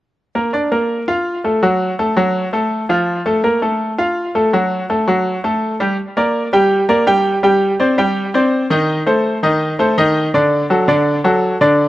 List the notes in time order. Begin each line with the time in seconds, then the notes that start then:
0.35 A#3 A#4
0.53 D4 D5
0.71 A#3 A#4
1.08 F4 F5
1.44 A3 A4
1.63 F#3 F#4
1.99 A3 A4
2.17 F#3 F#4
2.53 A3 A4
2.89 F3 F4
3.26 A3 A4
3.44 A#3 A#4
3.62 A3 A4
3.98 F4 F5
4.35 A3 A4
4.53 F#3 F#4
4.90 A3 A4
5.08 F#3 F#4
5.44 A3 A4
5.80 G3 G4
6.17 A#3 A#4 D5
6.53 G3 G4 G5
6.89 A#3 A#4 D5
7.07 G3 G4 G5
7.43 G3 G4 G5
7.80 C4 C5 D5
7.98 G3 G4 G5
8.34 C4 C5 D5
8.70 D#3 D#4 D#5
9.06 A3 A4 C5
9.43 D#3 D#4 D#5
9.79 A3 A4 C5
9.98 D#3 D#4 D#5
10.34 D3 D4 D5
10.70 F#3 F#4 A4
10.88 D3 D4 D5
11.24 F#3 F#4 A4
11.61 D3 D4 D5